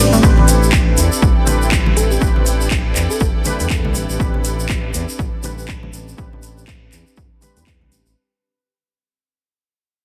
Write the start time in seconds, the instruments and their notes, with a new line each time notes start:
Already playing: analog synth bass A1, analog synth pad C4 B4 E5 A5, synth keys C4 D4 G4 B4
0.13 synth pluck A3, high conga, shaker
0.22 analog synth bass A1, synth keys C4 D4 G4 B4, string section E4, kick, shaker
0.37 analog synth bass A1, string section A4, low conga
0.48 open hi-hat, shaker
0.63 shaker
0.72 kick, clap, shaker
0.97 analog synth bass E2, string section D5, open hi-hat, shaker
1.12 shaker
1.22 analog synth bass A1, kick, shaker
1.29 string section G5
1.46 analog synth bass A1, synth keys C4 D4 G4 B4, open hi-hat, high conga, low conga, shaker
1.62 shaker
1.72 kick, clap, shaker
1.86 high conga, low conga
1.97 analog synth bass A1, fm electric piano A4, open hi-hat, shaker
2.11 fm electric piano G4, shaker
2.20 analog synth bass A1, synth keys C4 D4 G4 B4, kick, shaker
2.36 analog synth bass A1, low conga
2.46 open hi-hat, shaker
2.61 shaker
2.71 kick, clap
2.96 analog synth bass E2, clap, open hi-hat, shaker
3.10 fm electric piano A4, shaker
3.20 analog synth bass G1, kick, shaker
3.44 synth keys C4 D4 G4 B4, fm electric piano A4, open hi-hat, high conga, low conga, shaker
3.60 analog synth bass E2, open hi-hat, shaker
3.70 kick, clap, shaker
3.85 analog synth bass C2, high conga, low conga
3.95 analog synth bass A1, open hi-hat, shaker
4.10 analog synth bass A1, shaker
4.19 analog synth bass A1, synth keys C4 D4 G4 B4, kick, shaker
4.34 analog synth bass A1, low conga
4.45 open hi-hat, shaker
4.60 shaker
4.69 kick, clap, shaker
4.94 analog synth bass E2, open hi-hat, shaker
5.09 shaker
5.19 analog synth bass A1, kick, shaker
5.37 string section A5
5.43 analog synth bass A1, synth keys C4 D4 G4 B4, open hi-hat, high conga, low conga, shaker
5.58 shaker
5.68 kick, clap, shaker
5.83 high conga, low conga
5.93 analog synth bass A1, open hi-hat, shaker
6.08 shaker
6.17 analog synth bass A1, synth keys C4 D4 G4 B4, kick, shaker
6.33 analog synth bass A1, low conga
6.43 open hi-hat, shaker
6.58 shaker
6.67 kick, clap, shaker
6.92 analog synth bass E2, clap, open hi-hat, shaker
7.07 shaker
7.17 analog synth bass G1, kick, shaker
7.41 synth keys C4 D4 G4 B4, open hi-hat, high conga, low conga, shaker
7.57 analog synth bass E2, open hi-hat, shaker
7.67 kick, clap, shaker
7.81 analog synth bass C2, high conga, low conga
7.92 analog synth bass A1, open hi-hat, shaker
8.06 analog synth bass A1, shaker